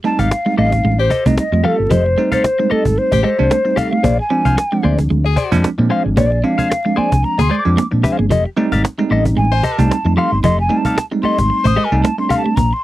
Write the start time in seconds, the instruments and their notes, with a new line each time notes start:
0.04 tine electric piano G3 A3 C4 D#4, clean electric guitar A3, flute A5, muted clean electric guitar stroke, cajon slap
0.19 fingered electric bass G#1, clean electric guitar G4 A4 F5, flute F5, cajon bass
0.31 muted clean electric guitar stroke, cajon slap
0.46 tine electric piano G3 A3 C4 D#4, clean electric guitar G#3, muted clean electric guitar stroke
0.57 fingered electric bass A1, clean electric guitar A3 G4 A4 D#5, flute F5, cajon slap
0.72 muted clean electric guitar stroke, cajon bass, cajon slap
0.84 fingered electric bass A1, clean electric guitar G#3
0.98 tenor saxophone G4, flute C5, muted clean electric guitar stroke
1.10 clean electric guitar G4 A4 D#5, muted clean electric guitar stroke, cajon bass
1.25 fingered electric bass C2, tine electric piano G3 A3 C4 D#4, clean electric guitar A3, flute D#5, muted clean electric guitar stroke, cajon bass
1.38 flute D#5, muted clean electric guitar stroke, cajon slap
1.52 fingered electric bass F2, tine electric piano G3 A3 C4 F4, clean electric guitar A3, muted clean electric guitar stroke
1.64 clean electric guitar F3 G4 A4 F5, flute A4, cajon slap
1.78 fingered electric bass G1, muted clean electric guitar stroke
1.90 fingered electric bass F1, clean electric guitar F3 G4 A4 D#5, flute C5, cajon bass
2.05 muted clean electric guitar stroke
2.17 tine electric piano G3 A3 C4 D#4, clean electric guitar A3, muted clean electric guitar stroke, cajon slap
2.32 clean electric guitar G4 A4 F5, flute C5, muted fingered electric bass stroke, cajon bass
2.44 muted clean electric guitar stroke, cajon slap
2.59 tine electric piano G3 A3 C4 D#4, clean electric guitar G#3, muted clean electric guitar stroke
2.70 clean electric guitar A3 G4 A4 D#5, flute A4, muted fingered electric bass stroke, cajon slap
2.85 fingered electric bass G#1, muted clean electric guitar stroke, cajon bass, cajon slap
2.97 flute C5, muted clean electric guitar stroke, cajon slap
3.11 fingered electric bass A1, clean electric guitar A3, tenor saxophone G4, muted clean electric guitar stroke, cajon bass
3.23 clean electric guitar G#3 G4 A4 D#5, flute C5
3.38 fingered electric bass C2, tine electric piano G3 A3 C4 D4, muted clean electric guitar stroke
3.51 clean electric guitar A3, cajon slap
3.65 tine electric piano G3 A3 C4 D#4, muted clean electric guitar stroke
3.76 clean electric guitar G4 A4 F5, flute F5, muted clean electric guitar stroke, cajon bass
3.92 clean electric guitar A3, muted clean electric guitar stroke
4.03 fingered electric bass A#1, clean electric guitar A#3 G#4 C5 D5, cajon bass
4.19 flute G#5, muted clean electric guitar stroke
4.30 tine electric piano F3 G#3 C4 D4, clean electric guitar C4, muted clean electric guitar stroke, cajon slap
4.45 fingered electric bass C2, clean electric guitar G#4 C5 F5, cajon bass
4.57 muted clean electric guitar stroke, cajon slap
4.72 tine electric piano F3 G#3 C4 D4, clean electric guitar G#3, muted clean electric guitar stroke
4.83 fingered electric bass D2, clean electric guitar A#3 G#4 C5 D5, cajon slap
4.98 muted clean electric guitar stroke, cajon bass, cajon slap
5.10 fingered electric bass D2, clean electric guitar G#3, cajon slap
5.25 tenor saxophone G#4, muted clean electric guitar stroke
5.36 clean electric guitar G#4 C5 D5, muted clean electric guitar stroke, cajon bass
5.51 fingered electric bass F2, tine electric piano F3 G#3 C4 D4, clean electric guitar A#3, cajon bass
5.64 muted clean electric guitar stroke, cajon slap
5.78 fingered electric bass A#2, tine electric piano F3 G#3 C4 D4, clean electric guitar A#3, muted clean electric guitar stroke
5.90 clean electric guitar G#3 G#4 C5 F5, cajon slap
6.05 fingered electric bass G#1, muted clean electric guitar stroke
6.17 fingered electric bass A#1, clean electric guitar A#3 G#4 C5 D5, flute D5, cajon bass
6.32 muted clean electric guitar stroke
6.43 tine electric piano F3 G#3 C4 D4, clean electric guitar C4, flute F5, muted clean electric guitar stroke, cajon slap
6.58 clean electric guitar G#4 C5 F5, muted fingered electric bass stroke, cajon bass
6.70 muted clean electric guitar stroke, cajon slap
6.85 tine electric piano F3 G#3 C4 D4, clean electric guitar G#3, muted clean electric guitar stroke
6.96 clean electric guitar A#3 G#4 C5 D5, flute G#5, muted fingered electric bass stroke, cajon slap
7.11 fingered electric bass C2, muted clean electric guitar stroke, cajon bass, cajon slap
7.24 flute A#5, muted clean electric guitar stroke, cajon slap
7.38 fingered electric bass D2, clean electric guitar A#3, tenor saxophone G#4, flute C6, muted clean electric guitar stroke, cajon bass
7.50 clean electric guitar G#3 G#4 C5 D5
7.59 flute D6
7.65 fingered electric bass F2, tine electric piano F3 G#3 C4 D4, muted clean electric guitar stroke, cajon slap
7.77 clean electric guitar A#3, cajon slap
7.91 fingered electric bass A#2, tine electric piano F3 G#3 C4 D4, muted clean electric guitar stroke
8.03 clean electric guitar G#4 C5 F5, muted clean electric guitar stroke, cajon bass
8.18 fingered electric bass G1, clean electric guitar A#3, muted clean electric guitar stroke
8.30 fingered electric bass F1, clean electric guitar F3 G4 A4 D#5, cajon bass
8.45 muted clean electric guitar stroke
8.57 tine electric piano G3 A3 C4 D#4, clean electric guitar A3, muted clean electric guitar stroke, cajon slap
8.72 fingered electric bass G#1, clean electric guitar G4 A4 F5, cajon bass
8.84 muted clean electric guitar stroke, cajon slap
8.98 tine electric piano G3 A3 C4 D#4, clean electric guitar G#3, muted clean electric guitar stroke
9.10 fingered electric bass A1, clean electric guitar A3 G4 A4 D#5, cajon slap
9.25 muted clean electric guitar stroke, cajon bass, cajon slap
9.37 fingered electric bass A1, clean electric guitar G#3, flute G#5, cajon slap
9.52 tenor saxophone C5, muted clean electric guitar stroke
9.63 clean electric guitar G4 A4 D#5, flute A5, muted clean electric guitar stroke, cajon bass
9.78 fingered electric bass C2, tine electric piano G3 A3 C4 D#4, clean electric guitar A3, cajon bass
9.90 muted clean electric guitar stroke, cajon slap
10.05 fingered electric bass F2, tine electric piano G3 A3 C4 D#4, clean electric guitar A3, muted clean electric guitar stroke
10.16 clean electric guitar F3 G4 A4 F5, flute C6, cajon slap
10.32 fingered electric bass G1, muted clean electric guitar stroke
10.43 fingered electric bass F1, clean electric guitar F3 G4 A4 D#5, flute C6, cajon bass
10.60 flute G#5, muted clean electric guitar stroke
10.69 tine electric piano G3 A3 C4 D#4, clean electric guitar A3, muted clean electric guitar stroke, cajon slap
10.77 flute A5
10.85 clean electric guitar G4 A4 F5, muted fingered electric bass stroke, cajon bass
10.97 muted clean electric guitar stroke, cajon slap
11.11 tine electric piano G3 A3 C4 D#4, clean electric guitar G#3, muted clean electric guitar stroke
11.23 clean electric guitar A3 G4 A4 D#5, flute C6, muted fingered electric bass stroke, cajon slap
11.38 fingered electric bass G#1, muted clean electric guitar stroke, cajon bass, cajon slap
11.50 muted clean electric guitar stroke, cajon slap
11.64 fingered electric bass A1, clean electric guitar A3, tenor saxophone C5, flute D#6, muted clean electric guitar stroke, cajon bass
11.76 clean electric guitar G#3 G4 A4 D#5, cajon slap
11.85 flute G#5
11.91 fingered electric bass C2, tine electric piano G3 A3 C4 D#4, muted clean electric guitar stroke
12.02 clean electric guitar A3, flute A5, cajon slap
12.18 tine electric piano G3 A3 C4 D4, flute C6, muted clean electric guitar stroke
12.29 clean electric guitar G4 A4 F5, muted clean electric guitar stroke, cajon bass
12.38 flute A5
12.44 clean electric guitar A3, muted clean electric guitar stroke
12.56 fingered electric bass A#1, clean electric guitar A#3, flute A#5, cajon bass
12.73 flute C6, muted clean electric guitar stroke